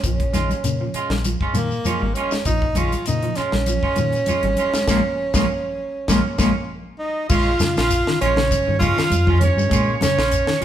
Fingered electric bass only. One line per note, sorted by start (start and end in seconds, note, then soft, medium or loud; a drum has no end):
0.04 0.52 A#1 loud
0.64 0.88 A#2 medium
0.94 muted fingered electric bass stroke soft
1.10 1.35 A#1 medium
1.53 1.79 A#2 medium
2.02 2.13 G#1 medium
2.33 muted fingered electric bass stroke soft
2.46 2.95 A#1 medium
3.07 3.31 A#2 medium
3.38 muted fingered electric bass stroke soft
3.53 3.78 A#1 medium
3.98 4.22 A#2 medium
4.43 4.55 G#1 medium
4.74 muted fingered electric bass stroke soft
4.87 5.00 A#1 medium
5.34 5.45 A#1 medium
6.08 6.21 A#1 medium
6.39 6.51 A#1 medium
7.30 7.54 A#1 medium
7.78 8.01 A#1 medium
8.22 8.58 A#1 medium
8.68 8.92 G2 medium
9.11 9.48 F2 loud
9.57 9.68 G2 medium
9.72 9.96 A#2 medium
10.18 10.42 A#1 medium